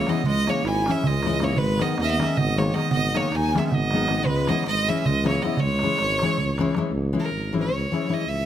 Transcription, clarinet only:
0, 0, Header, 1, 2, 480
1, 0, Start_track
1, 0, Key_signature, 4, "minor"
1, 0, Tempo, 383142
1, 302, Time_signature, 7, 3, 24, 8
1, 10594, End_track
2, 0, Start_track
2, 0, Title_t, "Clarinet"
2, 0, Program_c, 0, 71
2, 0, Note_on_c, 0, 58, 77
2, 122, Note_on_c, 0, 59, 69
2, 141, Note_off_c, 0, 58, 0
2, 311, Note_off_c, 0, 59, 0
2, 318, Note_on_c, 0, 56, 94
2, 595, Note_on_c, 0, 58, 76
2, 613, Note_off_c, 0, 56, 0
2, 817, Note_on_c, 0, 64, 85
2, 836, Note_off_c, 0, 58, 0
2, 1102, Note_on_c, 0, 61, 69
2, 1121, Note_off_c, 0, 64, 0
2, 1322, Note_on_c, 0, 56, 75
2, 1341, Note_off_c, 0, 61, 0
2, 1776, Note_on_c, 0, 58, 65
2, 1795, Note_off_c, 0, 56, 0
2, 1974, Note_on_c, 0, 56, 82
2, 1993, Note_off_c, 0, 58, 0
2, 2276, Note_on_c, 0, 59, 74
2, 2295, Note_off_c, 0, 56, 0
2, 2466, Note_off_c, 0, 59, 0
2, 2473, Note_on_c, 0, 59, 78
2, 2537, Note_on_c, 0, 61, 52
2, 2556, Note_off_c, 0, 59, 0
2, 2608, Note_on_c, 0, 59, 83
2, 2627, Note_off_c, 0, 61, 0
2, 2740, Note_on_c, 0, 61, 68
2, 2759, Note_off_c, 0, 59, 0
2, 2980, Note_on_c, 0, 59, 76
2, 2998, Note_off_c, 0, 61, 0
2, 3219, Note_on_c, 0, 58, 73
2, 3238, Note_off_c, 0, 59, 0
2, 3441, Note_on_c, 0, 59, 64
2, 3460, Note_off_c, 0, 58, 0
2, 3627, Note_off_c, 0, 59, 0
2, 3634, Note_on_c, 0, 59, 81
2, 3944, Note_on_c, 0, 58, 68
2, 3963, Note_off_c, 0, 59, 0
2, 4161, Note_on_c, 0, 63, 67
2, 4180, Note_off_c, 0, 58, 0
2, 4431, Note_on_c, 0, 61, 53
2, 4449, Note_off_c, 0, 63, 0
2, 4565, Note_off_c, 0, 61, 0
2, 4573, Note_on_c, 0, 61, 61
2, 4641, Note_on_c, 0, 59, 81
2, 4659, Note_off_c, 0, 61, 0
2, 5328, Note_on_c, 0, 56, 86
2, 5346, Note_off_c, 0, 59, 0
2, 5625, Note_on_c, 0, 59, 74
2, 5644, Note_off_c, 0, 56, 0
2, 5847, Note_off_c, 0, 59, 0
2, 5863, Note_on_c, 0, 56, 70
2, 6146, Note_on_c, 0, 61, 70
2, 6165, Note_off_c, 0, 56, 0
2, 6335, Note_on_c, 0, 56, 84
2, 6353, Note_off_c, 0, 61, 0
2, 6594, Note_off_c, 0, 56, 0
2, 6601, Note_on_c, 0, 58, 60
2, 6803, Note_on_c, 0, 59, 67
2, 6821, Note_off_c, 0, 58, 0
2, 7041, Note_on_c, 0, 56, 69
2, 7059, Note_off_c, 0, 59, 0
2, 8499, Note_off_c, 0, 56, 0
2, 10594, End_track
0, 0, End_of_file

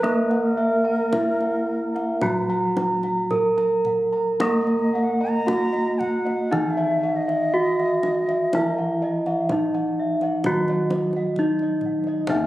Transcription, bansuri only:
0, 0, Header, 1, 2, 480
1, 0, Start_track
1, 0, Tempo, 1088929
1, 14, Time_signature, 4, 2, 24, 8
1, 2413, Tempo, 1036269
1, 3373, Tempo, 972447
1, 4813, Tempo, 914634
1, 5864, End_track
2, 0, Start_track
2, 0, Title_t, "Bansuri"
2, 0, Program_c, 0, 73
2, 0, Note_on_c, 0, 71, 94
2, 147, Note_off_c, 0, 71, 0
2, 147, Note_on_c, 0, 71, 51
2, 179, Note_on_c, 0, 70, 82
2, 186, Note_off_c, 0, 71, 0
2, 1009, Note_off_c, 0, 70, 0
2, 2104, Note_on_c, 0, 75, 76
2, 2219, Note_on_c, 0, 78, 81
2, 2225, Note_off_c, 0, 75, 0
2, 2335, Note_on_c, 0, 82, 102
2, 2341, Note_off_c, 0, 78, 0
2, 2651, Note_on_c, 0, 78, 75
2, 2657, Note_off_c, 0, 82, 0
2, 2980, Note_on_c, 0, 76, 81
2, 2987, Note_off_c, 0, 78, 0
2, 3179, Note_off_c, 0, 76, 0
2, 3179, Note_on_c, 0, 76, 78
2, 3195, Note_on_c, 0, 75, 85
2, 3199, Note_off_c, 0, 76, 0
2, 4145, Note_off_c, 0, 75, 0
2, 5864, End_track
0, 0, End_of_file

